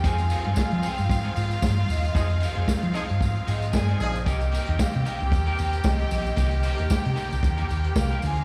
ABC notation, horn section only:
X:1
M:4/4
L:1/16
Q:"Swing 16ths" 1/4=114
K:Cm
V:1 name="Horn section"
z16 | [F,EA] z4 z [F,EA] z6 z [F,EA]2 | z16 | z16 |]